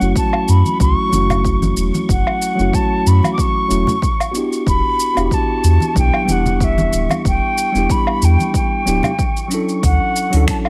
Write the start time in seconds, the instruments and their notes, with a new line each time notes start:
Already playing: tine electric piano F#3, flute F#5, synth texture C#6
0.00 sub bass F#1, tine electric piano A3 C#4 E4 F#4, shaker
0.16 flute A5, kick, shaker
0.33 low woodblock
0.48 sub bass F#2, flute B5, shaker
0.65 high conga, shaker
0.79 sub bass C#2, tine electric piano F#3 A3 C#4 E4 F#4, flute C#6, kick, shaker
1.09 sub bass F#1, tine electric piano F#3 A3 C#4, high conga
1.13 tine electric piano E4 F#4, shaker
1.30 low conga, low woodblock, shaker
1.44 kick, shaker
1.62 high conga, shaker
1.77 sub bass E1, shaker
1.94 high conga, shaker
2.09 sub bass F#1, flute F#5, kick, shaker
2.27 low woodblock
2.42 shaker
2.55 sub bass F#1, tine electric piano F#3 A3 C#4, shaker
2.60 tine electric piano E4 F#4
2.73 flute A5, kick, shaker
3.06 sub bass F#2, flute B5, shaker
3.23 high conga, low woodblock, shaker
3.33 flute D6
3.38 flute C#6, kick, shaker
3.68 sub bass E1, tine electric piano F#3 A3 C#4 E4 F#4, shaker
3.87 low conga, shaker
4.02 kick, shaker
4.20 low woodblock, shaker
4.31 tine electric piano B3 D4 F#4, shaker
4.36 tine electric piano E4 G4
4.52 shaker
4.67 sub bass E1, flute B5, kick, shaker
5.00 shaker
5.14 sub bass E1, tine electric piano B3 D4 F#4, low woodblock, shaker
5.18 tine electric piano E4 G4
5.31 flute A5, kick, shaker
5.64 sub bass E2, shaker
5.80 high conga, shaker
5.95 sub bass B1, tine electric piano F#3 B3 D4 E4 G4, kick, shaker
5.99 flute G5
6.14 low woodblock
6.25 sub bass E1, tine electric piano G3 B3 D4, high conga, shaker
6.30 tine electric piano E4 G4, flute F#5
6.46 low conga, shaker
6.60 flute E5, kick, shaker
6.78 high conga, shaker
6.93 sub bass D1, shaker
7.09 high conga, low woodblock, shaker
7.25 sub bass E1, flute G5, kick, shaker
7.58 shaker
7.72 sub bass E1, tine electric piano G3 B3 D4, shaker
7.77 tine electric piano E4 G4
7.90 flute B5, kick, shaker
8.07 low woodblock
8.22 sub bass E2, flute G5, shaker
8.39 high conga, shaker
8.54 flute G5, kick, shaker
8.85 sub bass D1, tine electric piano F#3 B3 D4 E4 G4, shaker
9.03 low conga, low woodblock, shaker
9.19 kick, shaker
9.37 shaker
9.48 tine electric piano F#3 C#4 D4, shaker
9.53 tine electric piano E4 A4
9.69 shaker
9.83 sub bass D2, flute F#5, kick, open hi-hat, shaker
10.16 shaker
10.30 sub bass D2, tine electric piano F#3 C#4 D4, open hi-hat, shaker
10.35 tine electric piano E4 A4
10.48 flute A5, finger snap, kick, open hi-hat, shaker
10.65 low woodblock